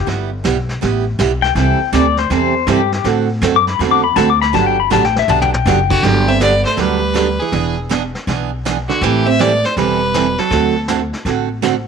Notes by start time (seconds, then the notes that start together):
0.07 G1 G3 B3 E4 G4, brush sweep, snare
0.44 B1 G3 B3 E4 G4, snare, hi-hat pedal
0.69 snare
0.81 A1 G3 B3 E4 G4, brush sweep, snare
1.19 B1 G3 B3 E4 G4, snare, hi-hat pedal
1.42 G5, snare
1.55 C2 C3 E3 G3 C4 E4 A4 G5, brush sweep, snare
1.80 muted upright bass stroke
1.92 D2 C3 E3 G3 C4 E4 A4 D5, snare, hi-hat pedal
2.17 C5, snare
2.30 E2 C3 E3 G3 C4 E4 A4 C5, brush sweep, snare
2.67 G2 C3 E3 G3 C4 E4 A4, snare, hi-hat pedal
2.71 G4
2.92 G4, snare
3.04 A2 D3 A3 C4 F#4 A4, brush sweep, snare
3.42 F#2 D3 A3 C4 F#4 A4, snare, hi-hat pedal
3.56 D6
3.67 B5, snare
3.79 E2 D3 A3 C4 F#4 A4, brush sweep, snare
3.91 D6
4.04 B5
4.16 D2 D3 A3 C4 F#4 A4 A5, snare, hi-hat pedal
4.30 D6
4.42 B5, snare
4.53 G1 D3 F#3 B3 D4 G4 A5, brush sweep, snare
4.66 G5
4.80 B5
4.90 A1 D3 F#3 B3 D4 G4 A5, snare, hi-hat pedal
5.04 G5, snare
5.16 E5, snare
5.28 B1 D3 F#3 B3 D4 G4 A5, floor tom
5.42 G5, floor tom
5.53 G5, mid tom
5.66 F#1 D3 F#3 B3 D4 G4, snare, hi-hat pedal
5.90 D3 F#4, kick, crash
6.03 G1 D3 F#3 B3 D4 G4, brush sweep, snare
6.28 C4 E5
6.40 D3 F#3 B3 D4 G4 D5, snare, hi-hat pedal
6.65 A3 C5, snare
6.77 D2 D3 F#3 G3 B3 D4 G4 B4, brush sweep, snare
7.14 D3 F#3 B3 D4 G4, snare, hi-hat pedal
7.40 E3 G#4
7.52 E1 E3 B3 D4 G#4, brush sweep, snare
7.89 E3 B3 D4 G#4, snare, hi-hat pedal
8.15 snare
8.27 B1 E3 B3 D4 G#4, brush sweep, snare
8.65 E3 B3 D4 G#4, snare, hi-hat pedal
8.89 D3 F#4, snare
9.01 A1 E3 G3 C4 E4 G4 A4, brush sweep, snare
9.26 C4 E5
9.39 E3 G3 B3 C4 E4 A4 D5, snare, hi-hat pedal
9.64 A3 C5, snare
9.77 E1 E3 G3 C4 E4 A4 B4, brush sweep, snare
10.14 E3 G3 C4 E4 A4, snare, hi-hat pedal
10.38 F#3 A4, snare
10.51 D2 D3 A3 C4 F#4 A4, brush sweep, snare
10.88 D3 A3 C4 F#4 A4, snare, hi-hat pedal
11.13 snare
11.25 A1 D3 A3 C4 F#4 A4, brush sweep, snare
11.62 D3 A3 C4 F#4 A4, snare, hi-hat pedal